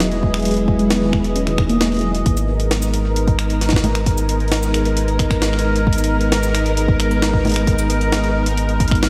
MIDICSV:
0, 0, Header, 1, 6, 480
1, 0, Start_track
1, 0, Key_signature, 5, "minor"
1, 0, Tempo, 451128
1, 484, Time_signature, 4, 2, 24, 8
1, 9674, End_track
2, 0, Start_track
2, 0, Title_t, "Synth texture"
2, 0, Program_c, 0, 99
2, 0, Note_on_c, 0, 75, 85
2, 2400, Note_on_c, 0, 70, 86
2, 2414, Note_off_c, 0, 75, 0
2, 9674, Note_off_c, 0, 70, 0
2, 9674, End_track
3, 0, Start_track
3, 0, Title_t, "String machine"
3, 0, Program_c, 1, 50
3, 0, Note_on_c, 1, 54, 85
3, 0, Note_on_c, 1, 59, 77
3, 0, Note_on_c, 1, 64, 77
3, 0, Note_on_c, 1, 68, 92
3, 2363, Note_off_c, 1, 54, 0
3, 2366, Note_off_c, 1, 59, 0
3, 2366, Note_off_c, 1, 64, 0
3, 2366, Note_off_c, 1, 68, 0
3, 2402, Note_on_c, 1, 56, 88
3, 2403, Note_on_c, 1, 59, 80
3, 2403, Note_on_c, 1, 63, 79
3, 2403, Note_on_c, 1, 70, 97
3, 9674, Note_off_c, 1, 56, 0
3, 9674, Note_off_c, 1, 59, 0
3, 9674, Note_off_c, 1, 63, 0
3, 9674, Note_off_c, 1, 70, 0
3, 9674, End_track
4, 0, Start_track
4, 0, Title_t, "Synth pluck"
4, 0, Program_c, 2, 84
4, 3, Note_on_c, 2, 54, 102
4, 61, Note_off_c, 2, 54, 0
4, 124, Note_on_c, 2, 56, 75
4, 220, Note_off_c, 2, 56, 0
4, 243, Note_on_c, 2, 56, 102
4, 301, Note_off_c, 2, 56, 0
4, 363, Note_on_c, 2, 56, 80
4, 460, Note_off_c, 2, 56, 0
4, 483, Note_on_c, 2, 56, 100
4, 580, Note_off_c, 2, 56, 0
4, 844, Note_on_c, 2, 56, 100
4, 958, Note_off_c, 2, 56, 0
4, 963, Note_on_c, 2, 59, 102
4, 1022, Note_off_c, 2, 59, 0
4, 1085, Note_on_c, 2, 51, 77
4, 1143, Note_off_c, 2, 51, 0
4, 1444, Note_on_c, 2, 61, 84
4, 1558, Note_off_c, 2, 61, 0
4, 1565, Note_on_c, 2, 51, 76
4, 1679, Note_off_c, 2, 51, 0
4, 1685, Note_on_c, 2, 63, 100
4, 1742, Note_off_c, 2, 63, 0
4, 1804, Note_on_c, 2, 58, 102
4, 1862, Note_off_c, 2, 58, 0
4, 1924, Note_on_c, 2, 56, 82
4, 2038, Note_off_c, 2, 56, 0
4, 2044, Note_on_c, 2, 58, 78
4, 2140, Note_off_c, 2, 58, 0
4, 2164, Note_on_c, 2, 54, 78
4, 2278, Note_off_c, 2, 54, 0
4, 9674, End_track
5, 0, Start_track
5, 0, Title_t, "Sub bass"
5, 0, Program_c, 3, 38
5, 0, Note_on_c, 3, 28, 88
5, 2379, Note_off_c, 3, 28, 0
5, 2404, Note_on_c, 3, 32, 85
5, 9674, Note_off_c, 3, 32, 0
5, 9674, End_track
6, 0, Start_track
6, 0, Title_t, "Drums"
6, 3, Note_on_c, 9, 38, 108
6, 3, Note_on_c, 9, 42, 76
6, 109, Note_off_c, 9, 38, 0
6, 109, Note_off_c, 9, 42, 0
6, 122, Note_on_c, 9, 42, 35
6, 229, Note_off_c, 9, 42, 0
6, 243, Note_on_c, 9, 36, 112
6, 350, Note_off_c, 9, 36, 0
6, 363, Note_on_c, 9, 26, 83
6, 363, Note_on_c, 9, 42, 23
6, 392, Note_off_c, 9, 42, 0
6, 392, Note_on_c, 9, 42, 27
6, 422, Note_off_c, 9, 42, 0
6, 422, Note_on_c, 9, 42, 30
6, 451, Note_off_c, 9, 42, 0
6, 451, Note_on_c, 9, 42, 33
6, 469, Note_off_c, 9, 26, 0
6, 482, Note_off_c, 9, 42, 0
6, 482, Note_on_c, 9, 42, 82
6, 511, Note_off_c, 9, 42, 0
6, 511, Note_on_c, 9, 42, 40
6, 542, Note_off_c, 9, 42, 0
6, 542, Note_on_c, 9, 42, 43
6, 573, Note_off_c, 9, 42, 0
6, 573, Note_on_c, 9, 42, 46
6, 603, Note_off_c, 9, 42, 0
6, 603, Note_on_c, 9, 42, 37
6, 709, Note_off_c, 9, 42, 0
6, 723, Note_on_c, 9, 36, 112
6, 830, Note_off_c, 9, 36, 0
6, 843, Note_on_c, 9, 42, 37
6, 949, Note_off_c, 9, 42, 0
6, 962, Note_on_c, 9, 38, 115
6, 962, Note_on_c, 9, 42, 78
6, 1069, Note_off_c, 9, 38, 0
6, 1069, Note_off_c, 9, 42, 0
6, 1203, Note_on_c, 9, 26, 53
6, 1204, Note_on_c, 9, 36, 102
6, 1309, Note_off_c, 9, 26, 0
6, 1310, Note_off_c, 9, 36, 0
6, 1324, Note_on_c, 9, 42, 38
6, 1430, Note_off_c, 9, 42, 0
6, 1443, Note_on_c, 9, 42, 79
6, 1550, Note_off_c, 9, 42, 0
6, 1564, Note_on_c, 9, 26, 64
6, 1564, Note_on_c, 9, 42, 36
6, 1670, Note_off_c, 9, 26, 0
6, 1670, Note_off_c, 9, 42, 0
6, 1683, Note_on_c, 9, 26, 62
6, 1684, Note_on_c, 9, 36, 118
6, 1789, Note_off_c, 9, 26, 0
6, 1790, Note_off_c, 9, 36, 0
6, 1803, Note_on_c, 9, 42, 53
6, 1909, Note_off_c, 9, 42, 0
6, 1923, Note_on_c, 9, 38, 115
6, 1923, Note_on_c, 9, 42, 77
6, 2030, Note_off_c, 9, 38, 0
6, 2030, Note_off_c, 9, 42, 0
6, 2043, Note_on_c, 9, 42, 17
6, 2067, Note_off_c, 9, 42, 0
6, 2067, Note_on_c, 9, 42, 21
6, 2092, Note_off_c, 9, 42, 0
6, 2092, Note_on_c, 9, 42, 24
6, 2115, Note_off_c, 9, 42, 0
6, 2115, Note_on_c, 9, 42, 28
6, 2139, Note_off_c, 9, 42, 0
6, 2139, Note_on_c, 9, 42, 32
6, 2246, Note_off_c, 9, 42, 0
6, 2283, Note_on_c, 9, 42, 52
6, 2390, Note_off_c, 9, 42, 0
6, 2403, Note_on_c, 9, 42, 84
6, 2404, Note_on_c, 9, 36, 121
6, 2509, Note_off_c, 9, 42, 0
6, 2511, Note_off_c, 9, 36, 0
6, 2523, Note_on_c, 9, 42, 38
6, 2523, Note_on_c, 9, 69, 59
6, 2629, Note_off_c, 9, 42, 0
6, 2629, Note_off_c, 9, 69, 0
6, 2763, Note_on_c, 9, 42, 56
6, 2870, Note_off_c, 9, 42, 0
6, 2883, Note_on_c, 9, 38, 118
6, 2883, Note_on_c, 9, 42, 86
6, 2990, Note_off_c, 9, 38, 0
6, 2990, Note_off_c, 9, 42, 0
6, 3003, Note_on_c, 9, 42, 38
6, 3003, Note_on_c, 9, 69, 74
6, 3110, Note_off_c, 9, 42, 0
6, 3110, Note_off_c, 9, 69, 0
6, 3124, Note_on_c, 9, 42, 80
6, 3230, Note_off_c, 9, 42, 0
6, 3364, Note_on_c, 9, 42, 82
6, 3471, Note_off_c, 9, 42, 0
6, 3485, Note_on_c, 9, 36, 120
6, 3485, Note_on_c, 9, 42, 40
6, 3591, Note_off_c, 9, 36, 0
6, 3591, Note_off_c, 9, 42, 0
6, 3604, Note_on_c, 9, 26, 61
6, 3604, Note_on_c, 9, 42, 81
6, 3710, Note_off_c, 9, 26, 0
6, 3710, Note_off_c, 9, 42, 0
6, 3725, Note_on_c, 9, 42, 53
6, 3831, Note_off_c, 9, 42, 0
6, 3845, Note_on_c, 9, 38, 53
6, 3845, Note_on_c, 9, 42, 83
6, 3925, Note_off_c, 9, 38, 0
6, 3925, Note_on_c, 9, 38, 73
6, 3951, Note_off_c, 9, 42, 0
6, 3965, Note_on_c, 9, 36, 119
6, 4004, Note_off_c, 9, 38, 0
6, 4004, Note_on_c, 9, 38, 96
6, 4071, Note_off_c, 9, 36, 0
6, 4084, Note_on_c, 9, 42, 79
6, 4084, Note_on_c, 9, 64, 80
6, 4111, Note_off_c, 9, 38, 0
6, 4191, Note_off_c, 9, 42, 0
6, 4191, Note_off_c, 9, 64, 0
6, 4205, Note_on_c, 9, 26, 83
6, 4205, Note_on_c, 9, 42, 55
6, 4311, Note_off_c, 9, 26, 0
6, 4311, Note_off_c, 9, 42, 0
6, 4324, Note_on_c, 9, 42, 84
6, 4325, Note_on_c, 9, 36, 127
6, 4430, Note_off_c, 9, 42, 0
6, 4431, Note_off_c, 9, 36, 0
6, 4445, Note_on_c, 9, 42, 40
6, 4445, Note_on_c, 9, 69, 59
6, 4551, Note_off_c, 9, 42, 0
6, 4551, Note_off_c, 9, 69, 0
6, 4564, Note_on_c, 9, 42, 84
6, 4671, Note_off_c, 9, 42, 0
6, 4685, Note_on_c, 9, 42, 25
6, 4765, Note_off_c, 9, 42, 0
6, 4765, Note_on_c, 9, 42, 35
6, 4805, Note_off_c, 9, 42, 0
6, 4805, Note_on_c, 9, 38, 126
6, 4805, Note_on_c, 9, 42, 85
6, 4845, Note_off_c, 9, 42, 0
6, 4845, Note_on_c, 9, 42, 44
6, 4911, Note_off_c, 9, 38, 0
6, 4926, Note_off_c, 9, 42, 0
6, 4926, Note_on_c, 9, 42, 38
6, 4926, Note_on_c, 9, 69, 75
6, 5032, Note_off_c, 9, 42, 0
6, 5032, Note_off_c, 9, 69, 0
6, 5046, Note_on_c, 9, 26, 52
6, 5046, Note_on_c, 9, 42, 84
6, 5152, Note_off_c, 9, 26, 0
6, 5152, Note_off_c, 9, 42, 0
6, 5165, Note_on_c, 9, 42, 56
6, 5271, Note_off_c, 9, 42, 0
6, 5285, Note_on_c, 9, 42, 84
6, 5391, Note_off_c, 9, 42, 0
6, 5405, Note_on_c, 9, 42, 39
6, 5512, Note_off_c, 9, 42, 0
6, 5524, Note_on_c, 9, 36, 114
6, 5525, Note_on_c, 9, 26, 60
6, 5525, Note_on_c, 9, 42, 81
6, 5631, Note_off_c, 9, 36, 0
6, 5632, Note_off_c, 9, 26, 0
6, 5632, Note_off_c, 9, 42, 0
6, 5644, Note_on_c, 9, 36, 125
6, 5646, Note_on_c, 9, 26, 63
6, 5646, Note_on_c, 9, 42, 56
6, 5751, Note_off_c, 9, 36, 0
6, 5752, Note_off_c, 9, 26, 0
6, 5752, Note_off_c, 9, 42, 0
6, 5765, Note_on_c, 9, 38, 123
6, 5765, Note_on_c, 9, 42, 84
6, 5871, Note_off_c, 9, 38, 0
6, 5871, Note_off_c, 9, 42, 0
6, 5885, Note_on_c, 9, 26, 39
6, 5945, Note_on_c, 9, 42, 84
6, 5992, Note_off_c, 9, 26, 0
6, 6051, Note_off_c, 9, 42, 0
6, 6124, Note_on_c, 9, 42, 57
6, 6231, Note_off_c, 9, 42, 0
6, 6244, Note_on_c, 9, 36, 126
6, 6306, Note_on_c, 9, 42, 83
6, 6351, Note_off_c, 9, 36, 0
6, 6365, Note_off_c, 9, 42, 0
6, 6365, Note_on_c, 9, 42, 39
6, 6365, Note_on_c, 9, 69, 59
6, 6424, Note_off_c, 9, 42, 0
6, 6424, Note_on_c, 9, 42, 84
6, 6472, Note_off_c, 9, 69, 0
6, 6531, Note_off_c, 9, 42, 0
6, 6604, Note_on_c, 9, 42, 56
6, 6710, Note_off_c, 9, 42, 0
6, 6724, Note_on_c, 9, 38, 123
6, 6724, Note_on_c, 9, 42, 84
6, 6831, Note_off_c, 9, 38, 0
6, 6831, Note_off_c, 9, 42, 0
6, 6845, Note_on_c, 9, 42, 37
6, 6845, Note_on_c, 9, 69, 76
6, 6951, Note_off_c, 9, 42, 0
6, 6951, Note_off_c, 9, 69, 0
6, 6965, Note_on_c, 9, 26, 51
6, 6965, Note_on_c, 9, 42, 80
6, 7071, Note_off_c, 9, 26, 0
6, 7071, Note_off_c, 9, 42, 0
6, 7085, Note_on_c, 9, 42, 55
6, 7191, Note_off_c, 9, 42, 0
6, 7205, Note_on_c, 9, 42, 81
6, 7311, Note_off_c, 9, 42, 0
6, 7324, Note_on_c, 9, 36, 126
6, 7431, Note_off_c, 9, 36, 0
6, 7445, Note_on_c, 9, 26, 59
6, 7445, Note_on_c, 9, 42, 81
6, 7551, Note_off_c, 9, 26, 0
6, 7551, Note_off_c, 9, 42, 0
6, 7566, Note_on_c, 9, 42, 55
6, 7673, Note_off_c, 9, 42, 0
6, 7686, Note_on_c, 9, 38, 126
6, 7686, Note_on_c, 9, 42, 83
6, 7792, Note_off_c, 9, 38, 0
6, 7792, Note_off_c, 9, 42, 0
6, 7804, Note_on_c, 9, 36, 120
6, 7911, Note_off_c, 9, 36, 0
6, 7926, Note_on_c, 9, 42, 35
6, 7926, Note_on_c, 9, 64, 78
6, 7950, Note_off_c, 9, 42, 0
6, 7950, Note_on_c, 9, 42, 42
6, 7974, Note_off_c, 9, 42, 0
6, 7974, Note_on_c, 9, 42, 51
6, 7998, Note_off_c, 9, 42, 0
6, 7998, Note_on_c, 9, 42, 59
6, 8021, Note_off_c, 9, 42, 0
6, 8021, Note_on_c, 9, 42, 67
6, 8032, Note_off_c, 9, 64, 0
6, 8045, Note_off_c, 9, 42, 0
6, 8045, Note_on_c, 9, 26, 78
6, 8045, Note_on_c, 9, 42, 56
6, 8151, Note_off_c, 9, 26, 0
6, 8151, Note_off_c, 9, 42, 0
6, 8164, Note_on_c, 9, 36, 122
6, 8164, Note_on_c, 9, 42, 81
6, 8271, Note_off_c, 9, 36, 0
6, 8271, Note_off_c, 9, 42, 0
6, 8285, Note_on_c, 9, 42, 37
6, 8285, Note_on_c, 9, 69, 64
6, 8391, Note_off_c, 9, 42, 0
6, 8391, Note_off_c, 9, 69, 0
6, 8404, Note_on_c, 9, 42, 80
6, 8510, Note_off_c, 9, 42, 0
6, 8524, Note_on_c, 9, 42, 52
6, 8630, Note_off_c, 9, 42, 0
6, 8644, Note_on_c, 9, 38, 125
6, 8644, Note_on_c, 9, 42, 80
6, 8750, Note_off_c, 9, 38, 0
6, 8750, Note_off_c, 9, 42, 0
6, 8763, Note_on_c, 9, 42, 36
6, 8870, Note_off_c, 9, 42, 0
6, 9004, Note_on_c, 9, 42, 81
6, 9110, Note_off_c, 9, 42, 0
6, 9123, Note_on_c, 9, 42, 81
6, 9230, Note_off_c, 9, 42, 0
6, 9244, Note_on_c, 9, 42, 38
6, 9351, Note_off_c, 9, 42, 0
6, 9364, Note_on_c, 9, 36, 115
6, 9364, Note_on_c, 9, 42, 73
6, 9445, Note_off_c, 9, 42, 0
6, 9445, Note_on_c, 9, 42, 61
6, 9471, Note_off_c, 9, 36, 0
6, 9484, Note_on_c, 9, 36, 125
6, 9485, Note_on_c, 9, 26, 59
6, 9525, Note_off_c, 9, 42, 0
6, 9525, Note_on_c, 9, 42, 49
6, 9591, Note_off_c, 9, 36, 0
6, 9592, Note_off_c, 9, 26, 0
6, 9605, Note_off_c, 9, 42, 0
6, 9605, Note_on_c, 9, 38, 119
6, 9605, Note_on_c, 9, 42, 77
6, 9674, Note_off_c, 9, 38, 0
6, 9674, Note_off_c, 9, 42, 0
6, 9674, End_track
0, 0, End_of_file